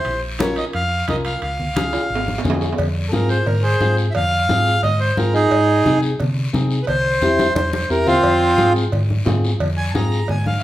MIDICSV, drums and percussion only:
0, 0, Header, 1, 2, 480
1, 0, Start_track
1, 0, Key_signature, -4, "minor"
1, 0, Tempo, 340909
1, 80, Time_signature, 4, 2, 24, 8
1, 14973, End_track
2, 0, Start_track
2, 0, Title_t, "Drums"
2, 68, Note_on_c, 9, 65, 62
2, 78, Note_on_c, 9, 74, 72
2, 84, Note_on_c, 9, 63, 33
2, 209, Note_off_c, 9, 65, 0
2, 219, Note_off_c, 9, 74, 0
2, 225, Note_off_c, 9, 63, 0
2, 548, Note_on_c, 9, 65, 64
2, 566, Note_on_c, 9, 73, 75
2, 567, Note_on_c, 9, 63, 103
2, 688, Note_off_c, 9, 65, 0
2, 707, Note_off_c, 9, 73, 0
2, 708, Note_off_c, 9, 63, 0
2, 791, Note_on_c, 9, 65, 67
2, 807, Note_on_c, 9, 73, 78
2, 932, Note_off_c, 9, 65, 0
2, 948, Note_off_c, 9, 73, 0
2, 1033, Note_on_c, 9, 65, 65
2, 1048, Note_on_c, 9, 63, 33
2, 1050, Note_on_c, 9, 74, 65
2, 1174, Note_off_c, 9, 65, 0
2, 1189, Note_off_c, 9, 63, 0
2, 1190, Note_off_c, 9, 74, 0
2, 1516, Note_on_c, 9, 65, 77
2, 1526, Note_on_c, 9, 73, 69
2, 1528, Note_on_c, 9, 63, 76
2, 1657, Note_off_c, 9, 65, 0
2, 1667, Note_off_c, 9, 73, 0
2, 1669, Note_off_c, 9, 63, 0
2, 1756, Note_on_c, 9, 65, 71
2, 1767, Note_on_c, 9, 73, 70
2, 1897, Note_off_c, 9, 65, 0
2, 1908, Note_off_c, 9, 73, 0
2, 1999, Note_on_c, 9, 65, 60
2, 2004, Note_on_c, 9, 74, 70
2, 2005, Note_on_c, 9, 63, 33
2, 2139, Note_off_c, 9, 65, 0
2, 2144, Note_off_c, 9, 74, 0
2, 2145, Note_off_c, 9, 63, 0
2, 2249, Note_on_c, 9, 64, 68
2, 2390, Note_off_c, 9, 64, 0
2, 2478, Note_on_c, 9, 65, 66
2, 2479, Note_on_c, 9, 73, 75
2, 2486, Note_on_c, 9, 63, 101
2, 2619, Note_off_c, 9, 65, 0
2, 2620, Note_off_c, 9, 73, 0
2, 2627, Note_off_c, 9, 63, 0
2, 2716, Note_on_c, 9, 65, 72
2, 2718, Note_on_c, 9, 73, 72
2, 2857, Note_off_c, 9, 65, 0
2, 2859, Note_off_c, 9, 73, 0
2, 2956, Note_on_c, 9, 74, 70
2, 2968, Note_on_c, 9, 63, 32
2, 3033, Note_on_c, 9, 66, 69
2, 3097, Note_off_c, 9, 74, 0
2, 3109, Note_off_c, 9, 63, 0
2, 3174, Note_off_c, 9, 66, 0
2, 3211, Note_on_c, 9, 63, 70
2, 3352, Note_off_c, 9, 63, 0
2, 3355, Note_on_c, 9, 66, 79
2, 3433, Note_on_c, 9, 73, 65
2, 3452, Note_on_c, 9, 63, 81
2, 3452, Note_on_c, 9, 64, 75
2, 3496, Note_off_c, 9, 66, 0
2, 3518, Note_on_c, 9, 66, 98
2, 3574, Note_off_c, 9, 73, 0
2, 3593, Note_off_c, 9, 63, 0
2, 3593, Note_off_c, 9, 64, 0
2, 3659, Note_off_c, 9, 66, 0
2, 3678, Note_on_c, 9, 73, 68
2, 3686, Note_on_c, 9, 66, 68
2, 3819, Note_off_c, 9, 73, 0
2, 3826, Note_off_c, 9, 66, 0
2, 3838, Note_on_c, 9, 66, 66
2, 3914, Note_on_c, 9, 74, 72
2, 3921, Note_on_c, 9, 56, 95
2, 3934, Note_on_c, 9, 64, 72
2, 3978, Note_off_c, 9, 66, 0
2, 4055, Note_off_c, 9, 74, 0
2, 4062, Note_off_c, 9, 56, 0
2, 4075, Note_off_c, 9, 64, 0
2, 4396, Note_on_c, 9, 73, 77
2, 4409, Note_on_c, 9, 63, 80
2, 4537, Note_off_c, 9, 73, 0
2, 4550, Note_off_c, 9, 63, 0
2, 4637, Note_on_c, 9, 73, 77
2, 4778, Note_off_c, 9, 73, 0
2, 4875, Note_on_c, 9, 74, 71
2, 4880, Note_on_c, 9, 56, 71
2, 4887, Note_on_c, 9, 64, 81
2, 5016, Note_off_c, 9, 74, 0
2, 5021, Note_off_c, 9, 56, 0
2, 5028, Note_off_c, 9, 64, 0
2, 5355, Note_on_c, 9, 73, 61
2, 5360, Note_on_c, 9, 63, 84
2, 5496, Note_off_c, 9, 73, 0
2, 5500, Note_off_c, 9, 63, 0
2, 5595, Note_on_c, 9, 73, 72
2, 5736, Note_off_c, 9, 73, 0
2, 5832, Note_on_c, 9, 74, 68
2, 5839, Note_on_c, 9, 56, 96
2, 5847, Note_on_c, 9, 64, 67
2, 5973, Note_off_c, 9, 74, 0
2, 5980, Note_off_c, 9, 56, 0
2, 5988, Note_off_c, 9, 64, 0
2, 6320, Note_on_c, 9, 73, 69
2, 6326, Note_on_c, 9, 63, 91
2, 6461, Note_off_c, 9, 73, 0
2, 6467, Note_off_c, 9, 63, 0
2, 6561, Note_on_c, 9, 73, 74
2, 6702, Note_off_c, 9, 73, 0
2, 6800, Note_on_c, 9, 74, 66
2, 6802, Note_on_c, 9, 56, 73
2, 6814, Note_on_c, 9, 64, 75
2, 6941, Note_off_c, 9, 74, 0
2, 6943, Note_off_c, 9, 56, 0
2, 6954, Note_off_c, 9, 64, 0
2, 7285, Note_on_c, 9, 63, 76
2, 7286, Note_on_c, 9, 73, 67
2, 7425, Note_off_c, 9, 63, 0
2, 7427, Note_off_c, 9, 73, 0
2, 7529, Note_on_c, 9, 73, 68
2, 7670, Note_off_c, 9, 73, 0
2, 7763, Note_on_c, 9, 56, 107
2, 7766, Note_on_c, 9, 74, 70
2, 7904, Note_off_c, 9, 56, 0
2, 7906, Note_off_c, 9, 74, 0
2, 8245, Note_on_c, 9, 73, 76
2, 8250, Note_on_c, 9, 63, 88
2, 8386, Note_off_c, 9, 73, 0
2, 8391, Note_off_c, 9, 63, 0
2, 8483, Note_on_c, 9, 73, 78
2, 8624, Note_off_c, 9, 73, 0
2, 8722, Note_on_c, 9, 74, 74
2, 8724, Note_on_c, 9, 56, 74
2, 8733, Note_on_c, 9, 64, 83
2, 8863, Note_off_c, 9, 74, 0
2, 8865, Note_off_c, 9, 56, 0
2, 8873, Note_off_c, 9, 64, 0
2, 9200, Note_on_c, 9, 73, 69
2, 9213, Note_on_c, 9, 63, 82
2, 9340, Note_off_c, 9, 73, 0
2, 9353, Note_off_c, 9, 63, 0
2, 9442, Note_on_c, 9, 73, 76
2, 9583, Note_off_c, 9, 73, 0
2, 9677, Note_on_c, 9, 56, 89
2, 9684, Note_on_c, 9, 74, 71
2, 9696, Note_on_c, 9, 64, 68
2, 9818, Note_off_c, 9, 56, 0
2, 9825, Note_off_c, 9, 74, 0
2, 9837, Note_off_c, 9, 64, 0
2, 10163, Note_on_c, 9, 73, 76
2, 10167, Note_on_c, 9, 63, 89
2, 10304, Note_off_c, 9, 73, 0
2, 10308, Note_off_c, 9, 63, 0
2, 10403, Note_on_c, 9, 73, 77
2, 10411, Note_on_c, 9, 63, 97
2, 10543, Note_off_c, 9, 73, 0
2, 10552, Note_off_c, 9, 63, 0
2, 10637, Note_on_c, 9, 56, 84
2, 10647, Note_on_c, 9, 63, 85
2, 10647, Note_on_c, 9, 74, 69
2, 10778, Note_off_c, 9, 56, 0
2, 10788, Note_off_c, 9, 63, 0
2, 10788, Note_off_c, 9, 74, 0
2, 10888, Note_on_c, 9, 63, 74
2, 11029, Note_off_c, 9, 63, 0
2, 11128, Note_on_c, 9, 73, 73
2, 11269, Note_off_c, 9, 73, 0
2, 11364, Note_on_c, 9, 64, 72
2, 11365, Note_on_c, 9, 73, 73
2, 11504, Note_off_c, 9, 64, 0
2, 11506, Note_off_c, 9, 73, 0
2, 11595, Note_on_c, 9, 56, 101
2, 11604, Note_on_c, 9, 74, 68
2, 11735, Note_off_c, 9, 56, 0
2, 11745, Note_off_c, 9, 74, 0
2, 12083, Note_on_c, 9, 63, 90
2, 12089, Note_on_c, 9, 73, 72
2, 12224, Note_off_c, 9, 63, 0
2, 12230, Note_off_c, 9, 73, 0
2, 12332, Note_on_c, 9, 73, 80
2, 12473, Note_off_c, 9, 73, 0
2, 12564, Note_on_c, 9, 56, 76
2, 12574, Note_on_c, 9, 64, 72
2, 12581, Note_on_c, 9, 74, 73
2, 12705, Note_off_c, 9, 56, 0
2, 12715, Note_off_c, 9, 64, 0
2, 12722, Note_off_c, 9, 74, 0
2, 12815, Note_on_c, 9, 63, 66
2, 12956, Note_off_c, 9, 63, 0
2, 13042, Note_on_c, 9, 66, 80
2, 13051, Note_on_c, 9, 63, 82
2, 13051, Note_on_c, 9, 64, 72
2, 13055, Note_on_c, 9, 73, 69
2, 13183, Note_off_c, 9, 66, 0
2, 13192, Note_off_c, 9, 63, 0
2, 13192, Note_off_c, 9, 64, 0
2, 13195, Note_off_c, 9, 73, 0
2, 13296, Note_on_c, 9, 73, 72
2, 13436, Note_off_c, 9, 73, 0
2, 13522, Note_on_c, 9, 56, 97
2, 13526, Note_on_c, 9, 64, 72
2, 13535, Note_on_c, 9, 74, 74
2, 13663, Note_off_c, 9, 56, 0
2, 13667, Note_off_c, 9, 64, 0
2, 13676, Note_off_c, 9, 74, 0
2, 14008, Note_on_c, 9, 73, 73
2, 14010, Note_on_c, 9, 63, 94
2, 14149, Note_off_c, 9, 73, 0
2, 14151, Note_off_c, 9, 63, 0
2, 14249, Note_on_c, 9, 73, 77
2, 14389, Note_off_c, 9, 73, 0
2, 14475, Note_on_c, 9, 56, 80
2, 14487, Note_on_c, 9, 74, 72
2, 14493, Note_on_c, 9, 64, 80
2, 14616, Note_off_c, 9, 56, 0
2, 14628, Note_off_c, 9, 74, 0
2, 14633, Note_off_c, 9, 64, 0
2, 14732, Note_on_c, 9, 63, 72
2, 14873, Note_off_c, 9, 63, 0
2, 14973, End_track
0, 0, End_of_file